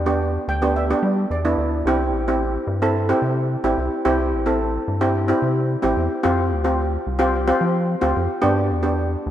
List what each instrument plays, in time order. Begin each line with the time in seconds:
Already playing: analog synth bass E2
0.06 steel pan B3 D4 G4
0.48 analog synth bass D2, steel pan G5
0.62 steel pan B3 D4 G4
0.76 steel pan E5
0.91 steel pan B3 D4 G4
1.03 analog synth bass G3
1.30 analog synth bass E2, steel pan D5
1.45 steel pan B3 D4 E4
1.58 analog synth bass D2
1.85 analog synth bass C2, steel pan C4 E4 G4
2.12 analog synth bass A1
2.28 steel pan C4 E4 G4
2.67 analog synth bass G2
2.82 steel pan C4 E4 A4
3.09 steel pan C4 E4 G4
3.22 analog synth bass C3
3.64 analog synth bass A1, steel pan C4 E4 G4
3.78 analog synth bass C2
4.05 analog synth bass C2, steel pan C4 E4 G4
4.33 analog synth bass A1
4.46 steel pan C4 E4 A4
4.88 analog synth bass G2
5.01 steel pan C4 E4 G4
5.28 steel pan C4 E4 G4
5.42 analog synth bass C3
5.82 analog synth bass A1, steel pan C4 E4 G4
5.97 analog synth bass E2
6.23 analog synth bass F2, steel pan C4 F4 G4
6.52 analog synth bass D2
6.64 steel pan C4 F4 G4
7.07 analog synth bass C2
7.19 steel pan C4 F4 G4
7.48 steel pan C4 F4 G4
7.61 analog synth bass F3
8.01 analog synth bass D2, steel pan C4 F4 G4
8.17 analog synth bass F2
8.42 analog synth bass G2, steel pan B3 D4 G4
8.71 analog synth bass E2
8.83 steel pan B3 D4 G4
9.26 analog synth bass D2